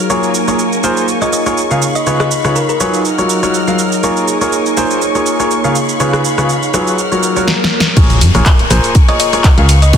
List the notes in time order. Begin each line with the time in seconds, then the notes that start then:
Already playing: D#4 G#4 A#4 C#5 F5
0.10 A#3 F4 G#4 A#4 C#5 G#5 C#6, shaker
0.23 shaker
0.34 shaker
0.48 A#3 F4 G#4 A#4 C#5, shaker
0.59 shaker
0.72 shaker
0.84 A#3 F4 G#4 A#4 C5, shaker
0.97 shaker
1.08 shaker
1.22 A#3 F4 G#4 A#4 C#5 D#5, shaker
1.33 D#5, shaker
1.46 A#3 F4 G#4 A#4 C#5, shaker
1.57 shaker
1.71 C#3 F4 G#4 A#4 F5, shaker
1.82 D#4 F5 B5, shaker
1.95 D#5, shaker
2.07 C#3 F4 G#4 B4 C#5, shaker
2.20 D#5, cross-stick, shaker
2.31 shaker
2.45 C#3 F4 G#4 B4 C#5, cross-stick, shaker
2.56 A#4, shaker
2.69 A#4, shaker
2.80 F#3 F4 G#4 B4 C#5, shaker
2.94 shaker
3.05 F#3 A#4 F#5 F6, shaker
3.18 F#3 F4 F#4 A#4 C#5, shaker
3.30 shaker
3.43 F#3 F4 F#4 A#4 C#5, shaker
3.50 G#4 C#5
3.54 shaker
3.68 F#3 F4 F#4 A#4 F5, shaker
3.79 shaker
3.92 shaker
4.03 A#3 F4 G#4 A#4 C#5 G#5 C#6, shaker
4.17 shaker
4.28 shaker
4.41 A#3 F4 G#4 A#4 C#5, shaker
4.53 shaker
4.66 shaker
4.77 A#3 F4 G#4 A#4 C5, shaker
4.91 shaker
5.02 shaker
5.15 A#3 F4 G#4 A#4 C#5, shaker
5.26 shaker
5.40 A#3 F4 G#4 A#4 C#5, shaker
5.51 shaker
5.64 C#3 F4 G#4 A#4 F5, shaker
5.75 F5 B5, shaker
5.89 shaker
6.00 C#3 F4 G#4 B4 C#5, shaker
6.13 cross-stick, shaker
6.25 shaker
6.38 C#3 F4 G#4 B4 C#5, cross-stick, shaker
6.49 shaker
6.63 shaker
6.74 F#3 F4 G#4 B4 C#5, cross-stick, shaker
6.87 shaker
6.98 F#3 A#4 F#5 F6, swell, shaker
7.12 F#3 F4 F#4 A#4 C#5, shaker
7.23 shaker
7.36 F#3 F4 F#4 A#4 C#5, shaker
7.48 snare
7.64 snare
7.80 snare
7.97 A#1 A#3 F4 G#4 A#4 C#5 G#5 C#6, kick, closed hi-hat, crash, ride, impact, shaker
8.10 closed hi-hat, ride, shaker
8.21 F2, open hi-hat, ride, shaker
8.35 A#1 A#3 F4 G#4 A#4 C#5, cross-stick, closed hi-hat, ride, shaker
8.45 kick, snare, clap, closed hi-hat, ride, shaker
8.59 closed hi-hat
8.71 A#1 A#3 F4 G#4 A#4 C5, cross-stick, open hi-hat, ride, shaker
8.84 closed hi-hat, shaker
8.95 kick, open hi-hat, ride, shaker
9.08 A#3 F4 G#4 A#4 C#5 D#5, closed hi-hat
9.20 D#5, open hi-hat, ride, shaker
9.33 A#3 F4 G#4 A#4 C#5, closed hi-hat, shaker
9.44 kick, snare, clap, closed hi-hat, ride, shaker
9.58 C#2 C#3 F4 G#4 A#4 F5, closed hi-hat
9.69 B4 F5, open hi-hat, ride, shaker
9.82 D#5, closed hi-hat, shaker
9.93 C#3 F4 G#4 B4 C#5, kick, closed hi-hat, open hi-hat, shaker